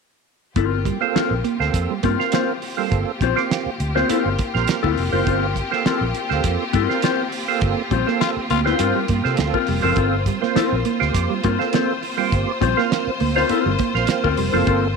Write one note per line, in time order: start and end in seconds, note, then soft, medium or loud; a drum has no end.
0.56 0.89 G1 medium
0.56 14.97 A#3 medium
0.56 0.77 C4 medium
0.56 14.97 C4 medium
0.56 14.97 F4 medium
0.56 0.77 F4 medium
0.56 9.94 G4 medium
0.56 0.78 A#4 medium
0.56 kick loud
0.56 closed hi-hat medium
0.72 muted clean electric guitar stroke soft
0.85 0.99 G3 medium
0.85 kick medium
0.85 closed hi-hat medium
1.01 1.35 A#3 medium
1.01 1.13 A#3 medium
1.01 1.35 C4 medium
1.01 1.35 F4 medium
1.01 1.36 A4 loud
1.15 1.32 C4 medium
1.15 1.32 F4 medium
1.15 1.32 A#4 medium
1.15 muted fingered electric bass stroke soft
1.15 snare loud
1.15 closed hi-hat medium
1.31 1.41 A#1 loud
1.44 1.58 A#3 medium
1.44 closed hi-hat medium
1.59 1.70 D2 medium
1.59 1.94 A#3 medium
1.59 1.94 C4 medium
1.59 1.94 F4 medium
1.59 1.94 A4 medium
1.59 snare soft
1.74 1.85 F2 loud
1.74 muted clean electric guitar stroke soft
1.74 kick medium
1.74 closed hi-hat loud
1.90 2.02 G3 medium
2.03 2.15 G2 medium
2.03 2.17 A#3 medium
2.03 2.20 C4 medium
2.03 2.21 F4 medium
2.03 2.21 A#4 medium
2.03 kick medium
2.03 closed hi-hat medium
2.19 2.53 A#3 medium
2.19 2.53 C4 medium
2.19 2.53 F4 medium
2.19 2.53 A#4 medium
2.19 snare soft
2.32 2.46 A#3 medium
2.32 2.49 C4 medium
2.32 2.50 F4 medium
2.32 2.50 C5 medium
2.32 snare loud
2.32 closed hi-hat loud
2.62 muted clean electric guitar stroke soft
2.62 open hi-hat medium
2.77 2.90 G3 medium
2.77 3.11 A#3 medium
2.77 3.12 C4 medium
2.77 3.12 F4 medium
2.77 3.12 A4 loud
2.92 3.03 G1 loud
2.92 kick loud
2.92 closed hi-hat medium
3.21 3.32 A#1 medium
3.21 3.38 C4 medium
3.21 3.38 F4 medium
3.21 3.39 C5 medium
3.21 kick medium
3.21 closed hi-hat medium
3.36 3.70 A#3 medium
3.36 3.70 C4 medium
3.36 3.71 F4 medium
3.36 3.71 G4 loud
3.36 snare soft
3.51 snare loud
3.51 closed hi-hat medium
3.66 muted fingered electric bass stroke soft
3.80 4.01 D2 medium
3.80 closed hi-hat medium
3.95 4.29 A#3 medium
3.95 4.29 C4 medium
3.95 4.08 C4 medium
3.95 4.29 F4 medium
3.95 4.09 F4 medium
3.95 4.10 C5 medium
3.95 4.30 C5 loud
3.95 snare soft
4.09 4.30 C4 medium
4.09 4.30 F4 medium
4.09 4.31 A#4 medium
4.09 muted fingered electric bass stroke soft
4.09 closed hi-hat loud
4.26 4.35 G1 medium
4.39 kick loud
4.39 closed hi-hat medium
4.54 4.65 A#1 medium
4.54 4.88 A#3 medium
4.54 4.88 C4 medium
4.54 4.88 F4 medium
4.54 4.88 A#4 medium
4.54 snare soft
4.68 snare loud
4.68 closed hi-hat loud
4.83 4.94 D2 medium
4.83 5.04 C4 medium
4.83 5.03 F4 medium
4.83 5.03 A#4 medium
4.83 kick medium
4.97 5.09 F1 medium
4.97 open hi-hat medium
5.12 5.23 F#1 loud
5.12 5.47 A#3 loud
5.12 5.47 C4 medium
5.12 5.25 C4 soft
5.12 5.47 F4 medium
5.12 5.25 F4 medium
5.12 5.24 A#4 medium
5.12 5.47 C5 loud
5.27 5.60 G1 loud
5.27 5.43 C4 medium
5.27 5.44 F4 medium
5.27 5.44 A#4 medium
5.27 kick loud
5.27 closed hi-hat medium
5.56 kick medium
5.56 closed hi-hat medium
5.71 6.05 A#3 medium
5.71 6.06 C4 medium
5.71 6.06 F4 medium
5.71 6.06 A4 medium
5.71 snare soft
5.86 6.02 C4 medium
5.86 6.02 F4 medium
5.86 6.03 A#4 medium
5.86 muted fingered electric bass stroke soft
5.86 snare loud
5.86 closed hi-hat medium
6.01 6.11 A#1 medium
6.14 closed hi-hat medium
6.29 6.41 D2 medium
6.29 6.64 A#3 medium
6.29 6.64 C4 medium
6.29 6.64 F4 medium
6.29 6.64 A4 medium
6.29 snare soft
6.44 6.56 F2 medium
6.44 kick medium
6.44 closed hi-hat loud
6.73 6.86 G2 loud
6.73 6.94 C4 medium
6.73 6.95 F4 medium
6.73 6.95 A#4 medium
6.73 kick medium
6.73 closed hi-hat medium
6.89 7.23 A#3 medium
6.89 7.23 C4 medium
6.89 7.23 F4 medium
6.89 7.23 A#4 medium
6.89 snare soft
7.02 7.20 C4 medium
7.02 7.20 F4 medium
7.02 7.20 C5 medium
7.02 snare loud
7.02 closed hi-hat loud
7.32 open hi-hat medium
7.48 7.82 A#3 medium
7.48 7.82 C4 medium
7.48 7.82 F4 medium
7.48 7.82 A4 loud
7.61 7.73 G1 medium
7.61 kick loud
7.61 closed hi-hat medium
7.78 muted clean electric guitar stroke soft
7.91 8.03 A#1 medium
7.91 8.05 G3 medium
7.91 8.08 C4 medium
7.91 8.08 F4 loud
7.91 8.09 C5 medium
7.91 kick medium
7.91 closed hi-hat medium
8.06 8.41 A#3 medium
8.06 8.19 A#3 medium
8.06 8.41 C4 medium
8.06 8.41 F4 medium
8.06 8.41 A4 loud
8.06 snare soft
8.21 8.31 F4 loud
8.21 snare loud
8.21 closed hi-hat medium
8.37 muted fingered electric bass stroke soft
8.50 8.72 D2 medium
8.50 8.64 A#3 medium
8.50 8.60 F4 medium
8.50 closed hi-hat medium
8.65 8.99 A#3 medium
8.65 9.00 C4 medium
8.65 8.78 C4 medium
8.65 9.00 F4 medium
8.65 8.79 F4 medium
8.65 8.80 C5 medium
8.65 9.00 C5 medium
8.65 snare soft
8.79 8.91 G2 loud
8.79 8.96 C4 medium
8.79 8.96 F4 medium
8.79 8.96 A#4 loud
8.79 muted clean electric guitar stroke soft
8.79 closed hi-hat loud
8.96 9.07 G3 medium
9.08 9.21 G2 loud
9.08 9.23 A#3 medium
9.08 kick medium
9.08 closed hi-hat medium
9.24 9.35 C3 medium
9.24 9.58 A#3 medium
9.24 9.58 C4 medium
9.24 9.59 F4 medium
9.24 9.59 A4 medium
9.24 snare soft
9.37 9.50 D2 medium
9.37 muted clean electric guitar stroke soft
9.37 snare loud
9.37 closed hi-hat loud
9.54 9.69 C4 medium
9.54 9.69 F4 medium
9.54 9.69 A#4 medium
9.54 kick medium
9.67 9.80 F1 medium
9.67 9.82 G3 medium
9.67 open hi-hat medium
9.82 9.94 F#1 medium
9.82 9.96 F3 medium
9.82 10.17 A#3 medium
9.82 10.17 C4 medium
9.82 9.95 C4 medium
9.82 10.17 F4 medium
9.82 9.95 F4 soft
9.82 10.17 A4 loud
9.82 9.95 A#4 medium
9.96 10.30 G1 loud
9.96 10.13 C4 medium
9.96 10.14 F4 medium
9.96 10.14 A#4 medium
9.96 14.97 C5 medium
9.96 kick loud
9.96 closed hi-hat medium
10.13 muted clean electric guitar stroke soft
10.26 10.40 G3 medium
10.26 kick medium
10.26 closed hi-hat medium
10.41 10.76 A#3 medium
10.41 10.54 A#3 medium
10.41 10.76 C4 medium
10.41 10.76 F4 medium
10.41 10.76 C5 loud
10.41 snare soft
10.56 10.76 C4 medium
10.56 10.77 F4 medium
10.56 10.77 A#4 loud
10.56 muted fingered electric bass stroke soft
10.56 snare loud
10.56 closed hi-hat medium
10.72 10.82 A#1 medium
10.85 10.99 A#3 medium
10.85 closed hi-hat medium
11.00 11.11 D2 medium
11.00 11.34 A#3 medium
11.00 11.34 C4 medium
11.00 11.34 F4 medium
11.00 11.35 G4 loud
11.00 snare soft
11.14 11.26 F2 loud
11.14 muted clean electric guitar stroke soft
11.14 kick loud
11.14 closed hi-hat loud
11.30 11.42 G3 medium
11.44 11.56 G2 loud
11.44 11.57 A#3 medium
11.44 11.61 C4 medium
11.44 11.61 F4 medium
11.44 11.61 A#4 loud
11.44 kick loud
11.44 closed hi-hat medium
11.59 11.93 A#3 medium
11.59 11.93 C4 medium
11.59 11.93 F4 medium
11.59 11.94 A4 medium
11.59 snare soft
11.73 11.87 A#3 medium
11.73 11.90 C4 medium
11.73 11.90 F4 medium
11.73 11.91 C5 medium
11.73 snare loud
11.73 closed hi-hat loud
12.03 muted clean electric guitar stroke soft
12.03 open hi-hat medium
12.17 12.30 G3 medium
12.17 12.52 A#3 medium
12.17 12.52 C4 medium
12.17 12.52 F4 medium
12.17 12.52 G4 loud
12.32 12.44 G1 loud
12.32 kick loud
12.32 closed hi-hat medium
12.48 muted clean electric guitar stroke soft
12.61 12.73 A#1 loud
12.61 12.75 G3 medium
12.61 12.78 C4 medium
12.61 12.78 F4 medium
12.61 12.79 C5 loud
12.61 kick medium
12.61 closed hi-hat medium
12.77 13.11 A#3 medium
12.77 12.89 A#3 medium
12.77 13.11 C4 medium
12.77 13.11 F4 medium
12.77 13.11 A#4 loud
12.77 snare soft
12.92 snare loud
12.92 closed hi-hat medium
13.07 muted fingered electric bass stroke soft
13.20 13.42 D2 medium
13.20 13.34 A#3 medium
13.20 open hi-hat medium
13.35 13.70 A#3 medium
13.35 13.70 C4 medium
13.35 13.48 C4 medium
13.35 13.70 F4 medium
13.35 13.49 F4 medium
13.35 13.70 A#4 medium
13.35 13.51 C5 medium
13.35 snare soft
13.49 13.70 C4 medium
13.49 13.71 F4 medium
13.49 13.71 A#4 medium
13.49 muted fingered electric bass stroke soft
13.49 muted clean electric guitar stroke soft
13.49 closed hi-hat loud
13.66 13.76 G1 medium
13.66 13.78 G3 medium
13.79 13.93 A#3 medium
13.79 kick medium
13.79 closed hi-hat medium
13.95 14.05 A#1 medium
13.95 14.29 A#3 medium
13.95 14.29 C4 medium
13.95 14.29 F4 medium
13.95 14.29 A#4 loud
13.95 snare soft
14.07 muted clean electric guitar stroke soft
14.07 snare loud
14.07 closed hi-hat loud
14.24 14.35 D2 medium
14.24 14.40 C4 medium
14.24 14.39 F4 medium
14.24 14.39 A#4 medium
14.24 kick medium
14.37 14.49 F1 medium
14.37 14.51 G3 medium
14.37 open hi-hat medium
14.53 14.64 F#1 loud
14.53 14.65 F3 medium
14.53 14.88 A#3 loud
14.53 14.88 C4 medium
14.53 14.65 C4 medium
14.53 14.65 F4 medium
14.53 14.88 F4 medium
14.53 14.88 A4 loud
14.53 14.65 A#4 medium
14.67 14.97 G1 medium
14.67 14.83 C4 medium
14.67 14.84 F4 medium
14.67 14.84 A#4 medium
14.67 kick loud
14.67 closed hi-hat medium
14.83 muted clean electric guitar stroke medium